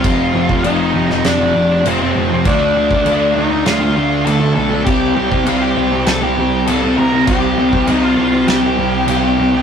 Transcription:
<<
  \new Staff \with { instrumentName = "Lead electric guitar" } { \time 4/4 \key c \dorian \tempo 4 = 100 f'4 ees'4 d'4 c'4 | d'4. ees'8 f'4 a'8 a'8 | g'8 g'8 f'16 g'8. a'16 g'8. a'8 bes'8 | g'4 ees'16 f'8. g'4 g'4 | }
  \new Staff \with { instrumentName = "Distorted electric guitar" } { \clef bass \time 4/4 \key c \dorian <f, c f>8 <f, c f>16 <c f>16 <f, c f>8 <f, c f>16 <c f>8 <c f>16 <f, c f>8 <f, c f>16 <c f>16 <f, c f>16 <c f>16 | <d a d'>8 <d a d'>16 <a d'>16 <d a d'>8 <d a d'>16 <a d'>8 <a d'>16 <d a d'>8 <d a d'>16 <a d'>16 <d a d'>16 <a d'>16 | <c g c'>8 <c g c'>16 <g c'>16 <c g c'>8 <c g c'>16 <g c'>8 <g c'>16 <c g c'>8 <c g c'>16 <g c'>16 <c g c'>16 <g c'>16 | <c g c'>8 <c g c'>16 <g c'>16 <c g c'>8 <c g c'>16 <g c'>8 <g c'>16 <c g c'>8 <c g c'>16 <g c'>16 <c g c'>16 <g c'>16 | }
  \new Staff \with { instrumentName = "Picked electric bass" } { \clef bass \time 4/4 \key c \dorian f,,8 f,,8 f,,8 f,,8 f,,8 f,,8 f,,8 f,,8 | d,8 d,8 d,8 d,8 d,8 d,8 d,8 b,,8 | c,8 c,8 c,8 c,8 c,8 c,8 c,8 c,8 | c,8 c,8 c,8 c,8 c,8 c,8 c,8 c,8 | }
  \new DrumStaff \with { instrumentName = "Drums" } \drummode { \time 4/4 <cymc bd>8. bd16 cymc8. sn16 <cymc sn>4 cymc4 | <cymc bd>8. bd16 cymc4 <cymc sn>4 cymc4 | <cymc bd>8. bd16 cymc4 <cymc sn>4 cymc4 | <cymc bd>8. bd16 cymc4 <cymc sn>4 cymc4 | }
>>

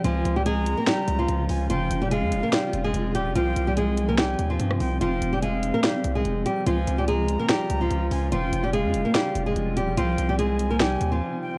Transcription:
<<
  \new Staff \with { instrumentName = "Flute" } { \time 4/4 \key f \minor \tempo 4 = 145 aes''4 bes''2~ bes''8 aes''8 | g''4 f''2 r4 | g''4 aes''2~ aes''8 g''8 | g''4 f''2 r4 |
aes''4 bes''2~ bes''8 aes''8 | g''4 f''2 r4 | g''4 aes''2~ aes''8 g''8 | }
  \new Staff \with { instrumentName = "Nylon-string guitar" } { \time 4/4 \key f \minor <f f'>8. <g g'>16 <aes aes'>8. <bes bes'>16 <g g'>8. <f f'>4~ <f f'>16 | <f f'>8. <g g'>16 <aes aes'>8. <bes bes'>16 <g g'>8. <aes aes'>8. <g g'>8 | <f f'>8. <g g'>16 <aes aes'>8. <bes bes'>16 <g g'>8. <f f'>4~ <f f'>16 | <f f'>8. <g g'>16 <aes aes'>8. <bes bes'>16 <g g'>8. <aes aes'>8. <g g'>8 |
<f f'>8. <g g'>16 <aes aes'>8. <bes bes'>16 <g g'>8. <f f'>4~ <f f'>16 | <f f'>8. <g g'>16 <aes aes'>8. <bes bes'>16 <g g'>8. <aes aes'>8. <g g'>8 | <f f'>8. <g g'>16 <aes aes'>8. <bes bes'>16 <g g'>8. <f f'>4~ <f f'>16 | }
  \new Staff \with { instrumentName = "Ambient pad" } { \time 4/4 \key f \minor << { f'1 | f'1 | r1 | f'1~ |
f'1~ | f'1 | r1 | } \\ { <des des'>1 | <f c'>1 | <c c' ees'>1 | f1 |
<des des'>1 | <f c'>1 | <c ees'>1 | } >> }
  \new Staff \with { instrumentName = "808-style bass" } { \clef bass \time 4/4 \key f \minor des,8 des,4~ des,16 r8. des,8 des,8 des,8 | f,,8 f,,8. f,16 f,,16 r8. f,,8 f,,8 ees,,16 f,,16 | c,8 c,2 ees,8 g,8 c,8 | f,,8 f,,4~ f,,16 r8. c,8 f,,8 r8 |
des,8 des,4~ des,16 r8. des,8 des,8 des,8 | f,,8 f,,8. f,16 f,,16 r8. f,,8 f,,8 ees,,16 f,,16 | c,8 c,2 ees,8 r4 | }
  \new DrumStaff \with { instrumentName = "Drums" } \drummode { \time 4/4 hh8 hh8 hh8 hh8 <hh sn>8 hh8 hh8 hho8 | hh8 hh8 hh8 hh8 <hh sn>8 hh8 hh8 hh8 | hh8 hh8 hh8 hh8 <hh sn>8 hh8 hh16 ss16 hho8 | hh8 hh8 hh8 hh8 <hh sn>8 hh8 hh8 hh8 |
hh8 hh8 hh8 hh8 <hh sn>8 hh8 hh8 hho8 | hh8 hh8 hh8 hh8 <hh sn>8 hh8 hh8 hh8 | hh8 hh8 hh8 hh8 <hh sn>8 hh8 r4 | }
>>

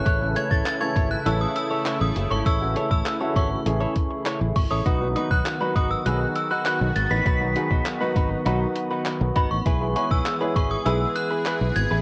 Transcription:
<<
  \new Staff \with { instrumentName = "Synth bell" } { \time 4/4 \key a \lydian \tempo 4 = 100 fis'''8 gis'''16 a'''16 a'''16 gis'''8 fis'''16 e'''16 dis'''16 e'''8. dis'''8 cis'''16 | e'''8. e'''8. cis'''4. r8 cis'''16 dis'''16~ | dis'''8 dis'''16 fis'''8. dis'''16 e'''16 fis'''8 e'''16 fis'''16 fis'''8 a'''16 b'''16 | b'''2. r8 b''16 cis'''16~ |
cis'''8 cis'''16 e'''8. cis'''16 dis'''16 e'''8 fis'''4 gis'''8 | }
  \new Staff \with { instrumentName = "Clean electric guitar" } { \time 4/4 \key a \lydian <e' a' cis''>16 r16 <e' a' cis''>16 <e' a' cis''>16 r16 <e' a' cis''>16 <e' a' cis''>16 r16 <e' a' cis''>16 r8 <e' a' cis''>16 <e' a' cis''>16 r8 <e' a' cis''>16 | <e' a' cis''>16 r16 <e' a' cis''>16 <e' a' cis''>16 r16 <e' a' cis''>16 <e' a' cis''>16 r8 <e' a' cis''>16 r8 <e' a' cis''>16 r8 <e' a' cis''>16 | <dis' fis' b'>16 r16 <dis' fis' b'>16 <dis' fis' b'>16 r16 <dis' fis' b'>16 <dis' fis' b'>16 r16 <dis' fis' b'>16 r8 <dis' fis' b'>16 <dis' fis' b'>16 r8 <dis' fis' b'>16 | <dis' fis' b'>16 r16 <dis' fis' b'>16 <dis' fis' b'>16 r16 <dis' fis' b'>16 <dis' fis' b'>16 r16 <dis' fis' b'>16 r8 <dis' fis' b'>16 r8 <dis' fis' b'>16 r16 |
<e' gis' b'>16 r16 <e' gis' b'>16 <e' gis' b'>16 r16 <e' gis' b'>16 <e' gis' b'>16 r16 <e' gis' b'>16 r8 <e' gis' b'>16 <e' gis' b'>16 r8 <e' gis' b'>16 | }
  \new Staff \with { instrumentName = "Grand piano" } { \time 4/4 \key a \lydian r16 <e a cis' e' a'>16 <e a cis' e'>8 r16 <e a cis' e' a'>8 r16 <e a cis' e' a'>4.~ <e a cis' e' a'>16 r16 | r16 <e a cis' e' fis'>16 <e a cis' e' a'>8 r16 <e a cis' e' fis'>8 r16 <e a cis' e' gis'>4.~ <e a cis' e' gis'>16 r16 | r16 <fis b dis' fis' b'>16 <fis b dis' fis' b'>8 r16 <fis b dis' fis' b'>8 r16 <fis b dis' fis' gis'>4.~ <fis b dis' fis' gis'>16 r16 | r16 <fis b dis' fis' b'>16 <fis b dis' fis' gis'>8 r16 <fis b dis' fis' b'>8 r16 <fis b dis' fis' b'>4.~ <fis b dis' fis' b'>16 r16 |
r16 <gis b e' gis' b'>16 <gis b e' gis' cis''>8 r16 <gis b e' gis' cis''>8 r16 <gis b e' gis' b'>4.~ <gis b e' gis' b'>16 r16 | }
  \new Staff \with { instrumentName = "Analog synth pad" } { \time 4/4 \key a \lydian << { <cis e'>1~ | <cis e'>1 | <dis fis'>1~ | <dis fis'>1 |
<e gis'>1 | } \\ { a1~ | a1 | b1~ | b1~ |
b1 | } >> }
  \new Staff \with { instrumentName = "Fingered electric bass" } { \clef bass \time 4/4 \key a \lydian a,,8. a,,16 r8 gis,,8 a,,8 r8. a,,16 fis,,16 gis,,16 | a,,8. a,,16 r8 gis,,8 a,,8 r8. a,,16 gis,,16 a,,16 | b,,8. b,,16 r8 gis,,8 b,,8 r8. b,,16 gis,,16 a,,16 | b,,8. b,,16 r8 gis,,8 b,,8 r8. b,,16 gis,,16 a,,16 |
b,,8. b,,16 r8 gis,,8 b,,8 r8. b,,16 gis,,16 a,,16 | }
  \new DrumStaff \with { instrumentName = "Drums" } \drummode { \time 4/4 <hh bd>8 hh16 bd16 <hc hh>8 <hh bd>8 hh8 hh8 <hc hh>8 hh8 | <hh bd>8 hh16 bd16 <hc hh>8 <hh bd>8 hh8 <hh bd>8 <hc hh>8 <hho bd>8 | <hh bd>8 hh16 bd16 <hc hh>8 <hh bd>8 hh8 hh8 <hc hh>8 hh8 | <hh bd>8 hh16 bd16 <hc hh>8 <hh bd>8 hh8 hh8 <hc hh>8 <hh bd>8 |
<hh bd>8 hh16 bd16 <hc hh>8 <hh bd>8 hh8 hh8 <hc hh>8 hh8 | }
>>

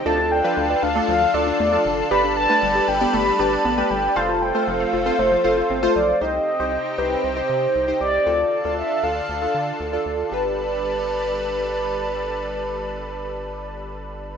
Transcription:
<<
  \new Staff \with { instrumentName = "Soft synth lead" } { \time 4/4 \key g \mixolydian \tempo 4 = 117 a''8 g''4 f''8 f''8 d''8 d''8. r16 | b''8 a''4 g''8 b''8 a''4 g''8 | a''8 g''8 f''4 c''4. d''8 | ees''4. b'8 c''4. d''8~ |
d''4 e''8 f''2 r8 | b'1~ | b'1 | }
  \new Staff \with { instrumentName = "Synth keys" } { \time 4/4 \key g \mixolydian <d' f' a'>8. <d' f' b'>8. r16 <d' f' a'>8. <d' f' a'>8. <d' f' a'>8. | <d' g' b'>8. <d' g' b'>8. r16 <d' g' d''>8. <d' g' b'>8. <d' g' b'>8. | <f' a' c''>8. <f' a' c''>8. r16 <f' a' c''>8. <f' a' c''>8. <f' a' c''>8. | <ees' g' c''>8. <ees' g' c''>8. <ees' g' c''>8. <ees' g' c''>8. r16 <ees' g' c''>8. |
<d' f' a'>8. <d' f' a'>8. <d' f' a'>8. <d' f' a'>8. r16 <d' f' a'>8. | <d' g' b'>1~ | <d' g' b'>1 | }
  \new Staff \with { instrumentName = "Analog synth pad" } { \time 4/4 \key g \mixolydian << { <d f' a'>1 | <g b'>1 | <c' f'>1 | <c ees' g'>1 |
<d f' a'>1 | <g d' a' b'>1~ | <g d' a' b'>1 | } \\ { d'1~ | d'1 | a1 | c'1 |
d'1 | r1 | r1 | } >> }
  \new Staff \with { instrumentName = "Synth pluck" } { \time 4/4 \key g \mixolydian d''16 d'16 r16 f16 d16 d''16 d'16 a16 f16 d16 d''16 d'16 a16 f16 d16 r16 | g'16 d'16 r16 a16 g16 g'16 d'16 b16 a16 g16 g'16 d'16 b16 a16 g16 r16 | f''16 f'16 r16 a16 f16 f''16 f'16 c'16 a16 f16 f''16 f'16 c'16 a16 f16 r16 | r1 |
r1 | r1 | r1 | }
  \new Staff \with { instrumentName = "Analog synth bass" } { \clef bass \time 4/4 \key g \mixolydian d,4 d,8 d,8 d,8 d,8 e,8 f,,8 | g,,4 g,,8 g,,8 g,,8 g,,8 a,,8 g,,8 | f,,4 f,,8 f,,8 f,,8 f,,8 g,,8 b,,8 | c,8 r16 c,8 r16 c,8 c,8 c8 c,8 c,8 |
d,8 r16 d,8 r16 d,8 d,8 d8 d,8 d,8 | g,,1~ | g,,1 | }
>>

